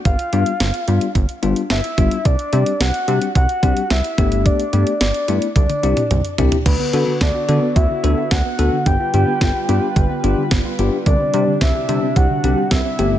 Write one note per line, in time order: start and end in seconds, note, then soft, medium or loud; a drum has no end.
0.05 0.16 G1 loud
0.05 1.11 F5 loud
0.05 kick loud
0.05 closed hi-hat medium
0.19 closed hi-hat medium
0.33 0.44 G2 medium
0.33 0.51 G3 medium
0.33 0.51 B3 medium
0.33 0.51 D4 medium
0.33 0.51 F4 medium
0.33 closed hi-hat medium
0.46 closed hi-hat medium
0.60 0.71 G1 loud
0.60 snare loud
0.60 closed hi-hat medium
0.74 closed hi-hat medium
0.88 0.99 G2 loud
0.88 1.06 G3 medium
0.88 1.06 B3 medium
0.88 1.06 D4 medium
0.88 1.06 F4 loud
0.88 closed hi-hat medium
1.01 closed hi-hat medium
1.15 1.26 G1 loud
1.15 kick medium
1.15 closed hi-hat medium
1.29 closed hi-hat soft
1.43 1.54 G1 loud
1.43 1.61 G3 medium
1.43 1.61 B3 medium
1.43 1.61 D4 medium
1.43 1.61 F4 loud
1.43 closed hi-hat medium
1.56 closed hi-hat medium
1.70 1.81 G1 loud
1.70 2.27 E5 loud
1.70 snare loud
1.70 closed hi-hat medium
1.84 closed hi-hat medium
1.98 2.09 G1 medium
1.98 2.16 G3 medium
1.98 2.16 B3 medium
1.98 2.16 D4 medium
1.98 2.16 F4 medium
1.98 kick medium
1.98 closed hi-hat medium
2.11 closed hi-hat medium
2.25 2.36 C2 loud
2.25 2.80 D5 loud
2.25 kick loud
2.25 closed hi-hat medium
2.39 closed hi-hat medium
2.53 2.64 C3 loud
2.53 2.71 G3 medium
2.53 2.71 C4 medium
2.53 2.71 D4 medium
2.53 2.71 G4 medium
2.53 closed hi-hat medium
2.66 closed hi-hat medium
2.80 2.91 C2 loud
2.80 3.32 F#5 loud
2.80 snare loud
2.80 closed hi-hat medium
2.94 closed hi-hat medium
3.08 3.19 C3 loud
3.08 3.26 G3 medium
3.08 3.26 C4 medium
3.08 3.26 D4 medium
3.08 3.26 G4 medium
3.08 closed hi-hat medium
3.22 closed hi-hat medium
3.35 3.46 C2 loud
3.35 3.92 F#5 loud
3.35 kick medium
3.35 closed hi-hat medium
3.49 closed hi-hat soft
3.63 3.74 C2 medium
3.63 3.81 G3 medium
3.63 3.81 C4 medium
3.63 3.81 D4 medium
3.63 3.81 G4 medium
3.63 kick loud
3.63 closed hi-hat medium
3.77 closed hi-hat medium
3.90 4.02 C2 loud
3.90 4.47 E5 loud
3.90 snare loud
3.90 closed hi-hat medium
4.04 closed hi-hat medium
4.18 4.51 G1 loud
4.18 4.62 A3 medium
4.18 4.62 B3 medium
4.18 4.62 D4 medium
4.18 4.62 G4 medium
4.18 kick medium
4.18 closed hi-hat medium
4.32 closed hi-hat medium
4.46 5.00 D5 loud
4.46 kick loud
4.46 closed hi-hat medium
4.60 closed hi-hat medium
4.73 4.84 G2 loud
4.73 4.91 A3 medium
4.73 4.91 B3 medium
4.73 4.91 D4 medium
4.73 4.91 G4 medium
4.73 closed hi-hat medium
4.87 closed hi-hat medium
5.01 5.12 G1 loud
5.01 5.52 D5 medium
5.01 snare loud
5.01 closed hi-hat medium
5.14 closed hi-hat medium
5.28 5.39 G2 loud
5.28 5.46 A3 medium
5.28 5.46 B3 medium
5.28 5.46 D4 medium
5.28 5.46 E4 medium
5.28 closed hi-hat medium
5.42 closed hi-hat medium
5.56 5.67 C2 loud
5.56 6.34 D5 medium
5.56 kick medium
5.56 closed hi-hat medium
5.56 high tom medium
5.70 closed hi-hat soft
5.70 high tom medium
5.83 5.94 C2 loud
5.83 6.01 C4 medium
5.83 6.01 D4 medium
5.83 6.01 E4 medium
5.83 6.01 G4 medium
5.83 closed hi-hat medium
5.97 closed hi-hat medium
5.97 mid tom medium
6.11 6.22 C2 medium
6.11 closed hi-hat medium
6.11 mid tom medium
6.25 closed hi-hat medium
6.38 6.49 C2 loud
6.38 6.56 C4 medium
6.38 6.56 D4 medium
6.38 6.56 E4 medium
6.38 6.56 G4 medium
6.38 closed hi-hat medium
6.38 floor tom loud
6.52 closed hi-hat medium
6.52 floor tom medium
6.66 6.77 D2 loud
6.66 8.84 D3 medium
6.66 6.74 D3 medium
6.66 8.84 B3 medium
6.66 8.84 F#4 medium
6.66 7.17 B4 medium
6.66 kick loud
6.66 closed hi-hat medium
6.66 crash medium
6.80 6.88 B3 medium
6.93 7.04 D3 loud
6.93 7.11 B3 medium
6.93 7.11 D4 medium
6.93 7.02 F#4 medium
6.93 7.11 F#4 medium
6.93 7.11 A4 medium
6.93 closed hi-hat medium
7.07 7.15 D3 medium
7.21 7.32 D2 loud
7.21 7.29 B3 medium
7.21 7.78 D5 medium
7.21 kick loud
7.21 snare loud
7.21 closed hi-hat medium
7.35 7.43 F#4 medium
7.48 7.57 D3 medium
7.48 7.59 D3 loud
7.48 7.66 B3 medium
7.48 7.66 D4 medium
7.48 7.66 F#4 medium
7.48 7.66 A4 medium
7.48 closed hi-hat medium
7.62 7.71 B3 medium
7.76 7.87 D2 loud
7.76 7.84 F#4 medium
7.76 8.33 E5 loud
7.76 kick loud
7.76 closed hi-hat medium
7.90 7.98 D3 medium
8.03 8.15 D2 loud
8.03 8.21 B3 medium
8.03 8.12 B3 medium
8.03 8.21 D4 medium
8.03 8.21 F#4 medium
8.03 8.21 A4 medium
8.03 closed hi-hat medium
8.18 8.26 F#4 medium
8.31 8.42 D2 loud
8.31 8.86 F#5 loud
8.31 kick loud
8.31 snare loud
8.31 closed hi-hat medium
8.45 8.53 B3 medium
8.59 8.70 D2 loud
8.59 8.77 B3 medium
8.59 8.77 D4 medium
8.59 8.77 F#4 medium
8.59 8.67 F#4 medium
8.59 8.77 A4 medium
8.59 closed hi-hat medium
8.73 8.81 D3 medium
8.86 8.97 G1 loud
8.86 12.95 G3 medium
8.86 8.94 B3 loud
8.86 11.04 F4 medium
8.86 11.04 B4 medium
8.86 10.47 G5 loud
8.86 kick loud
8.86 closed hi-hat medium
9.00 9.08 F4 medium
9.14 9.25 G2 medium
9.14 9.22 D3 medium
9.14 9.32 B3 medium
9.14 9.32 D4 medium
9.14 9.32 F4 medium
9.14 9.32 G4 medium
9.14 closed hi-hat medium
9.28 9.36 B3 medium
9.41 9.52 G1 loud
9.41 9.50 F4 medium
9.41 kick loud
9.41 snare loud
9.41 closed hi-hat medium
9.69 9.80 G2 loud
9.69 9.77 B3 medium
9.69 9.87 B3 medium
9.69 9.87 D4 medium
9.69 9.87 F4 medium
9.69 9.87 G4 loud
9.69 closed hi-hat medium
9.96 10.07 G1 loud
9.96 10.04 D3 medium
9.96 kick loud
9.96 closed hi-hat medium
10.10 10.18 B3 medium
10.24 10.35 G1 loud
10.24 10.42 B3 medium
10.24 10.42 D4 medium
10.24 10.42 F4 medium
10.24 10.42 G4 loud
10.24 closed hi-hat medium
10.37 10.46 D3 medium
10.51 10.62 G1 loud
10.51 10.59 B3 medium
10.51 kick loud
10.51 snare loud
10.51 closed hi-hat medium
10.65 10.73 F4 medium
10.79 10.90 G1 medium
10.79 10.97 B3 medium
10.79 10.97 D4 medium
10.79 10.97 F4 medium
10.79 10.97 G4 loud
10.79 closed hi-hat medium
10.92 11.01 B3 medium
11.06 11.17 C2 loud
11.06 12.97 C3 medium
11.06 11.14 D3 medium
11.06 12.97 D4 medium
11.06 11.57 D5 loud
11.06 kick loud
11.06 closed hi-hat medium
11.20 11.28 C4 medium
11.34 11.45 C3 loud
11.34 11.52 G3 medium
11.34 11.52 C4 medium
11.34 11.52 D4 medium
11.34 11.52 G4 medium
11.34 11.42 G4 medium
11.34 closed hi-hat medium
11.48 11.56 D3 medium
11.61 11.72 C2 loud
11.61 11.69 C4 medium
11.61 12.18 E5 medium
11.61 kick loud
11.61 snare loud
11.61 closed hi-hat medium
11.75 11.83 G4 medium
11.89 12.00 C3 loud
11.89 11.97 D3 medium
11.89 12.07 G3 medium
11.89 12.07 C4 medium
11.89 12.07 D4 medium
11.89 12.07 G4 medium
11.89 closed hi-hat medium
12.03 12.11 C4 medium
12.16 12.27 C2 loud
12.16 12.24 G4 loud
12.16 12.71 F#5 loud
12.16 kick loud
12.16 closed hi-hat medium
12.30 12.38 D3 medium
12.44 12.55 C2 loud
12.44 12.62 G3 medium
12.44 12.52 C4 medium
12.44 12.62 C4 medium
12.44 12.62 D4 medium
12.44 12.62 G4 medium
12.44 closed hi-hat medium
12.58 12.66 G4 medium
12.71 12.82 C2 loud
12.71 13.19 E5 medium
12.71 kick loud
12.71 snare loud
12.71 closed hi-hat medium
12.85 12.93 C4 medium
12.99 13.19 G1 loud
12.99 13.19 A3 medium
12.99 13.19 B3 medium
12.99 13.19 D4 medium
12.99 13.07 G4 medium
12.99 13.19 G4 medium
12.99 closed hi-hat medium
13.12 13.19 D3 medium